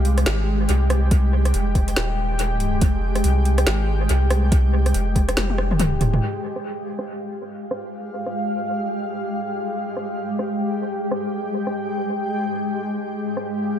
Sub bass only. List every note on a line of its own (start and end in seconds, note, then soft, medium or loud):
0.00 0.25 C2 loud
0.26 0.67 G#1 medium
0.69 1.53 C2 loud
1.54 1.95 F1 loud
1.96 2.80 D#1 loud
2.81 3.23 F1 loud
3.24 3.65 C2 loud
3.67 4.08 G#1 medium
4.09 4.93 C2 loud
4.94 5.35 F1 loud
5.37 5.99 F1 loud
6.01 6.21 D#1 medium